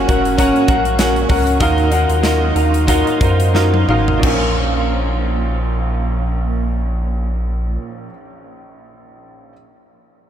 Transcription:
0.00 0.07 C#4 loud
0.00 0.08 F#4 loud
0.00 0.09 A#4 loud
0.00 0.09 F#5 loud
0.07 0.52 F#1 loud
0.07 0.37 F#3 medium
0.07 0.38 A#3 medium
0.07 0.31 C#4 medium
0.07 0.39 C#4 medium
0.07 0.38 F#4 medium
0.07 0.32 F#4 medium
0.07 0.32 A#4 medium
0.07 0.32 F#5 loud
0.07 kick loud
0.07 closed hi-hat medium
0.25 closed hi-hat medium
0.38 0.68 F#3 medium
0.38 0.69 A#3 medium
0.38 0.62 C#4 loud
0.38 0.68 C#4 medium
0.38 0.62 F#4 loud
0.38 0.67 F#4 medium
0.38 0.62 A#4 loud
0.38 0.63 F#5 loud
0.38 kick medium
0.38 closed hi-hat loud
0.56 closed hi-hat soft
0.68 1.26 A#1 loud
0.68 0.98 F#3 soft
0.68 0.99 A#3 medium
0.68 0.92 C#4 medium
0.68 0.99 C#4 medium
0.68 0.99 F#4 medium
0.68 0.92 F#4 medium
0.68 0.93 A#4 medium
0.68 0.93 F#5 loud
0.68 kick loud
0.68 closed hi-hat medium
0.85 closed hi-hat medium
0.98 1.30 F#2 medium
0.98 1.30 C#3 medium
0.98 1.30 F#3 loud
0.98 1.30 A#3 medium
0.98 1.23 C#4 medium
0.98 1.29 C#4 medium
0.98 1.23 F#4 medium
0.98 1.28 F#4 loud
0.98 1.23 A#4 medium
0.98 1.24 F#5 loud
0.98 snare loud
0.98 closed hi-hat loud
1.16 closed hi-hat soft
1.29 1.58 C#2 loud
1.29 1.60 F#3 medium
1.29 1.60 A#3 medium
1.29 1.53 C#4 medium
1.29 1.61 C#4 medium
1.29 1.54 F#4 medium
1.29 1.60 F#4 medium
1.29 1.54 A#4 medium
1.29 1.54 F#5 loud
1.29 kick medium
1.29 open hi-hat medium
1.47 closed hi-hat medium
1.60 2.06 D#2 loud
1.60 1.92 D#3 loud
1.60 2.52 D#3 medium
1.60 1.92 F#3 loud
1.60 1.92 A#3 medium
1.60 1.85 D#4 loud
1.60 1.92 D#4 loud
1.60 1.90 F4 medium
1.60 1.85 F#4 loud
1.60 1.85 A#4 loud
1.60 1.86 F5 loud
1.60 kick loud
1.60 closed hi-hat medium
1.78 closed hi-hat soft
1.91 2.23 A#3 soft
1.91 2.16 D#4 medium
1.91 2.23 D#4 medium
1.91 2.23 F4 medium
1.91 2.17 F#4 medium
1.91 2.17 A#4 medium
1.91 2.17 F#5 loud
1.91 closed hi-hat medium
2.09 2.52 D#2 medium
2.09 closed hi-hat medium
2.22 2.55 D#3 loud
2.22 2.56 F#3 loud
2.22 2.56 A#3 loud
2.22 2.48 D#4 loud
2.22 2.55 D#4 loud
2.22 2.54 F4 loud
2.22 2.49 F#4 medium
2.22 2.49 A#4 medium
2.22 2.49 F5 loud
2.22 snare loud
2.22 closed hi-hat medium
2.54 3.03 D#2 loud
2.54 2.87 A#3 medium
2.54 2.81 D#4 medium
2.54 2.88 D#4 medium
2.54 2.88 F4 medium
2.54 2.81 F#4 medium
2.54 2.81 A#4 medium
2.54 2.81 F5 medium
2.54 closed hi-hat medium
2.74 closed hi-hat medium
2.87 3.21 F#3 medium
2.87 3.21 A#3 medium
2.87 3.13 D#4 loud
2.87 3.21 D#4 medium
2.87 3.19 F4 medium
2.87 3.14 F#4 loud
2.87 3.14 A#4 loud
2.87 3.14 F5 loud
2.87 kick loud
2.87 closed hi-hat loud
3.07 closed hi-hat soft
3.20 3.85 F#2 loud
3.20 3.54 A#3 soft
3.20 3.47 D#4 medium
3.20 3.54 D#4 medium
3.20 3.54 F4 medium
3.20 3.47 F#4 medium
3.20 3.48 A#4 medium
3.20 3.48 C5 medium
3.20 kick loud
3.20 closed hi-hat medium
3.40 closed hi-hat medium
3.54 3.88 D#3 medium
3.54 3.89 F#3 medium
3.54 3.89 A#3 medium
3.54 3.81 D#4 medium
3.54 3.88 D#4 medium
3.54 3.86 F4 loud
3.54 3.81 F#4 medium
3.54 3.81 A#4 medium
3.54 3.82 F5 medium
3.54 snare medium
3.74 high tom medium
3.88 4.21 G#1 loud
3.88 4.24 A#3 medium
3.88 4.15 D#4 loud
3.88 4.23 D#4 medium
3.88 4.23 F4 medium
3.88 4.16 F#4 medium
3.88 4.16 A#4 medium
3.88 4.16 F5 loud
3.88 mid tom medium
4.08 floor tom medium
4.17 8.08 A#2 medium
4.17 8.06 C#4 medium
4.23 7.78 A#1 loud
4.23 8.10 A#1 loud
4.23 8.14 F3 medium
4.23 8.10 A#4 medium
4.23 8.14 F5 loud
4.23 kick loud
4.23 crash loud
4.29 8.19 A#3 medium
4.33 8.24 C#4 medium
4.38 8.29 F4 medium

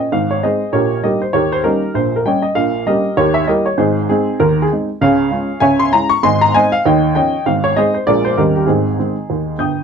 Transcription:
0.00 0.10 D#5 medium
0.12 0.38 G#1 medium
0.12 0.38 G#2 medium
0.12 0.30 F5 medium
0.31 0.42 C#5 medium
0.43 0.60 G#3 soft
0.43 0.60 C4 soft
0.43 0.60 D#4 soft
0.43 0.72 G#4 medium
0.43 0.72 C5 medium
0.43 0.73 D#5 medium
0.72 0.98 A#1 medium
0.72 0.98 A#2 medium
0.72 1.01 G4 medium
0.72 1.01 A#4 medium
0.72 1.03 C#5 medium
1.03 1.20 G3 soft
1.03 1.20 A#3 soft
1.03 1.21 D#4 soft
1.03 1.21 G4 medium
1.03 1.20 A#4 medium
1.03 1.21 D#5 medium
1.22 1.34 C5 medium
1.33 1.60 D#2 soft
1.33 1.60 D#3 medium
1.33 1.51 G4 medium
1.33 1.51 A#4 medium
1.33 1.51 C#5 medium
1.52 1.64 C5 medium
1.64 1.81 G3 soft
1.64 1.81 A#3 soft
1.64 1.82 C#4 soft
1.64 1.93 D#4 medium
1.64 1.93 G4 medium
1.64 1.94 A#4 medium
1.94 2.20 A#1 medium
1.94 2.21 A#2 medium
1.94 2.15 C5 medium
2.16 2.26 A#4 medium
2.25 2.42 G3 soft
2.25 2.43 A#3 soft
2.25 2.43 C#4 soft
2.25 2.43 C#5 medium
2.25 2.41 D#5 medium
2.25 2.43 G5 medium
2.42 2.55 D#5 medium
2.55 2.81 A#1 medium
2.55 2.81 A#2 medium
2.55 2.86 F5 medium
2.86 3.03 G3 soft
2.86 3.04 A#3 soft
2.86 3.04 C#4 soft
2.86 3.15 G4 medium
2.86 3.15 A#4 medium
2.86 3.17 D#5 medium
3.17 3.43 D#2 medium
3.17 3.43 D#3 medium
3.17 3.35 G4 medium
3.17 3.35 A#4 medium
3.17 3.35 C#5 medium
3.34 3.47 E5 medium
3.47 3.64 G3 soft
3.47 3.65 A#3 soft
3.47 3.65 E4 soft
3.47 3.65 G4 medium
3.47 3.65 A#4 medium
3.47 3.66 D#5 medium
3.66 3.78 C#5 medium
3.78 4.04 G#1 medium
3.78 4.04 G#2 medium
3.78 4.07 D#4 medium
3.78 4.07 G#4 medium
3.78 4.08 C5 medium
4.09 4.26 G#3 soft
4.09 4.38 C4 medium
4.09 4.38 D#4 medium
4.09 4.39 G#4 medium
4.40 4.66 D#2 medium
4.40 4.65 D#3 medium
4.40 4.60 A#4 medium
4.62 4.71 G#4 medium
4.72 4.88 G#3 soft
4.72 4.88 C4 soft
4.72 4.89 D#4 medium
5.01 5.27 C#2 medium
5.01 5.27 C#3 medium
5.01 5.59 G#4 medium
5.01 5.59 C#5 medium
5.01 5.62 F5 medium
5.31 5.48 G#3 soft
5.31 5.48 C#4 soft
5.31 5.48 F4 medium
5.60 5.87 C#2 medium
5.60 5.87 C#3 medium
5.60 5.79 C#5 medium
5.60 5.79 E5 medium
5.60 5.79 G#5 loud
5.79 5.92 C6 loud
5.93 6.09 G#3 soft
5.93 6.10 C#4 soft
5.93 6.10 E4 medium
5.93 6.11 A#5 medium
6.10 6.22 C#6 loud
6.23 6.49 G#1 medium
6.23 6.49 G#2 medium
6.23 6.41 D#5 medium
6.23 6.41 G#5 medium
6.23 6.41 C6 loud
6.41 6.53 A#5 loud
6.54 6.71 G#3 soft
6.54 6.71 C4 soft
6.54 6.72 D#4 medium
6.54 6.72 C5 medium
6.54 6.72 D#5 medium
6.54 6.72 G#5 loud
6.72 6.84 F5 loud
6.86 7.11 D#2 medium
6.86 7.11 D#3 medium
6.86 7.14 C#5 medium
6.86 7.14 D#5 medium
6.86 7.14 G5 medium
7.15 7.32 F3 soft
7.15 7.32 C#4 soft
7.15 7.33 D#4 soft
7.15 7.44 C#5 medium
7.15 7.44 D#5 medium
7.15 7.45 G5 medium
7.46 7.72 G#1 medium
7.46 7.72 G#2 medium
7.46 7.64 F5 medium
7.64 7.76 C#5 medium
7.76 7.93 G#3 medium
7.76 7.94 C4 soft
7.76 7.94 D#4 soft
7.76 7.94 G#4 medium
7.76 7.93 C5 medium
7.76 7.94 D#5 medium
7.94 8.06 C5 medium
8.07 8.33 A#1 medium
8.07 8.33 A#2 medium
8.07 8.24 F3 soft
8.07 8.24 G#3 soft
8.07 8.24 A#3 soft
8.07 8.24 G#4 medium
8.07 8.24 A#4 medium
8.07 8.25 D5 loud
8.25 8.37 C5 medium
8.37 8.63 D#2 medium
8.37 8.64 D#3 medium
8.37 8.55 G3 soft
8.37 8.55 C#4 soft
8.37 8.55 D#4 medium
8.37 8.54 G4 medium
8.37 8.56 A#4 medium
8.56 8.68 G4 medium
8.67 8.93 G#1 medium
8.67 8.93 G#2 medium
8.67 8.98 C4 medium
8.67 9.56 D#4 medium
8.67 9.59 G#4 medium
8.98 9.16 D#3 soft
8.98 9.15 G#3 soft
8.98 9.16 C4 medium
9.30 9.55 D#2 medium
9.30 9.55 D#3 medium
9.58 9.84 G1 medium
9.58 9.83 G2 medium
9.58 9.84 G5 medium
9.58 9.84 D#6 medium
9.58 9.84 G6 medium

